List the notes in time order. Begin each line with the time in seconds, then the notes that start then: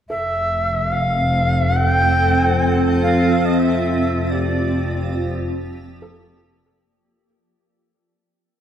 0.09 F1 F3 C4 A4 E5
0.42 A4
0.69 F4
0.92 F5
1.77 G5
3.02 F5
3.45 F1 F3 D#5
3.60 E5
3.78 G4
4.30 G4 D5
4.94 A#3
5.01 D5
6.02 A4